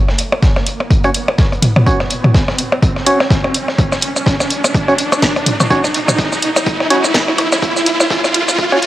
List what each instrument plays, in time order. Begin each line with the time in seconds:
Already playing: riser
0.08 snare, percussion blips
0.18 closed hi-hat
0.32 percussion blips
0.42 kick, snare, closed hi-hat
0.56 snare, percussion blips
0.67 closed hi-hat
0.80 percussion blips
0.91 kick, closed hi-hat
1.04 synth stab C#4 F#4 C#5, closed hi-hat, percussion blips
1.14 closed hi-hat
1.28 percussion blips
1.38 kick, snare, closed hi-hat
1.52 closed hi-hat, percussion blips
1.62 closed hi-hat, mid tom
1.76 mid tom, percussion blips
1.86 synth stab C#4 F#4 C#5, kick, closed hi-hat
2.00 snare, percussion blips
2.10 closed hi-hat
2.24 mid tom, percussion blips
2.34 kick, snare, closed hi-hat
2.48 snare, percussion blips
2.58 closed hi-hat
2.72 percussion blips
2.82 kick, closed hi-hat
2.96 snare, percussion blips
3.06 synth stab C#4 F#4 C#5, closed hi-hat
3.20 snare, percussion blips
3.30 kick, snare, closed hi-hat
3.44 percussion blips
3.54 closed hi-hat
3.68 snare, percussion blips
3.78 kick, closed hi-hat
3.92 snare, percussion blips, shaker
4.01 closed hi-hat
4.16 percussion blips, shaker
4.26 kick, snare, closed hi-hat
4.40 snare, percussion blips, shaker
4.50 closed hi-hat
4.64 percussion blips, shaker
4.74 kick, closed hi-hat
4.88 synth stab C#4 F#4 C#5, closed hi-hat, percussion blips
4.98 closed hi-hat
5.12 percussion blips, shaker
5.22 kick, snare, closed hi-hat
5.36 closed hi-hat, percussion blips
5.46 closed hi-hat, mid tom
5.60 mid tom, percussion blips, shaker
5.70 synth stab C#4 F#4 C#5, kick, closed hi-hat
5.84 snare, percussion blips, shaker
5.94 closed hi-hat
6.08 mid tom, percussion blips, shaker
6.18 kick, snare, closed hi-hat
6.32 snare, percussion blips, shaker
6.42 closed hi-hat
6.56 percussion blips, shaker
6.66 kick, closed hi-hat
6.80 snare, percussion blips
6.90 synth stab C#4 F#4 C#5, closed hi-hat
7.03 snare, percussion blips, shaker
7.14 kick, snare, closed hi-hat
7.28 percussion blips
7.38 closed hi-hat, percussion blips
7.52 snare, percussion blips, shaker
7.62 kick, closed hi-hat
7.76 snare, percussion blips, shaker
7.86 closed hi-hat
8.00 percussion blips, shaker
8.10 kick, snare, closed hi-hat
8.24 snare, percussion blips, shaker
8.34 closed hi-hat
8.48 percussion blips, shaker
8.58 kick, closed hi-hat
8.72 synth stab C#4 F#4 C#5, closed hi-hat, percussion blips
8.82 closed hi-hat